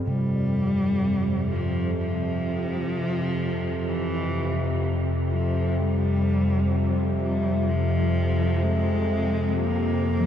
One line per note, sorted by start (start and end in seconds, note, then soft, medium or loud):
0.00 4.42 G2 medium
0.00 0.17 G3 medium
0.00 10.26 C4 medium
0.00 10.26 G4 medium
0.00 10.26 F5 medium
0.06 10.26 F2 medium
0.06 5.79 C3 medium
0.06 10.26 C3 medium
0.06 1.53 G3 loud
1.52 1.98 F3 medium
1.98 3.92 F3 medium
3.91 4.85 E3 medium
5.31 5.80 F3 medium
5.78 7.21 G3 medium
7.22 7.71 G3 medium
7.69 8.64 F3 loud
8.63 9.61 G#3 loud
9.59 10.26 A#3 loud
10.20 10.26 F3 medium